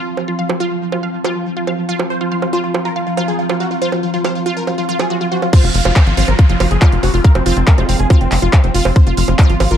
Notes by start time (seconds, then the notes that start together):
Already playing: F3 C4 F4 F5 C6
0.17 high bongo
0.28 F4
0.39 F5
0.49 high bongo
0.60 F4
0.92 F4, high bongo
1.03 F5
1.24 F4, high bongo
1.57 F4
1.67 F5, high bongo
1.89 F4
1.99 high bongo
2.10 C5 A#5
2.21 F4
2.32 F4 F5
2.42 F4, high bongo
2.53 F4 C5
2.64 F4
2.74 F4, high bongo
2.85 F4 A#4
2.96 F4 F5
3.07 F4
3.17 F4, high bongo
3.28 G#4
3.39 F4
3.49 F4, high bongo
3.60 F#4 F5
3.71 F4
3.82 F4 C5
3.92 F4, high bongo
4.03 F4
4.14 F4
4.24 C5 F5, high bongo
4.35 F4
4.46 F4
4.57 A#4
4.67 F4, high bongo, swell
4.78 F4
4.89 F4
4.99 F4 G#4, high bongo
5.10 F4 F#4
5.21 F4
5.32 F#4 C5
5.42 F4, high bongo
5.53 F3 C4 F4 C5, kick, closed hi-hat, crash, high bongo, downlifter
5.64 F1 F4, closed hi-hat
5.68 F4
5.72 F1 F4 F5, open hi-hat
5.85 F1 F4, closed hi-hat, high bongo
5.95 C5 F5 C6, kick, clap, closed hi-hat
6.07 G#1 F4, closed hi-hat
6.17 G#1 C4 F4, open hi-hat
6.28 G#1 A#4, closed hi-hat, high bongo
6.39 F4, kick, closed hi-hat
6.49 F#1 F4, closed hi-hat
6.60 F#1 F4 F5, open hi-hat, high bongo
6.71 F#1 G#4, closed hi-hat
6.82 F4, kick, clap, closed hi-hat
6.92 F1 F4, closed hi-hat
7.03 F1 F#4, open hi-hat, high bongo
7.14 F1 F4
7.24 A#4 F5, kick, closed hi-hat
7.35 F1 C4, closed hi-hat, high bongo
7.46 F1 C4 F4, open hi-hat
7.57 F1 C4, closed hi-hat
7.67 G#3 A#4, kick, clap, closed hi-hat
7.78 F1 C4 F4, closed hi-hat, high bongo
7.89 F1 C4 F5, open hi-hat
7.99 F1 G#4, closed hi-hat
8.10 C4 F4, kick, closed hi-hat, high bongo
8.21 F1 C4, closed hi-hat
8.32 F1 C4, clap, open hi-hat
8.42 F1 F4, closed hi-hat
8.53 C4 F5, kick, clap, closed hi-hat, high bongo
8.64 F1 C4, closed hi-hat
8.74 F1 F4, open hi-hat
8.85 F1 C4, high bongo
8.96 C5, kick, closed hi-hat
9.07 F1 F4, closed hi-hat
9.17 F1 F4 F5, open hi-hat
9.28 F1 F4, closed hi-hat, high bongo
9.39 F4 C5, kick, clap, closed hi-hat
9.50 G#1 F4, closed hi-hat
9.60 G#1 F4, open hi-hat, high bongo
9.71 G#1 F4 A#4, closed hi-hat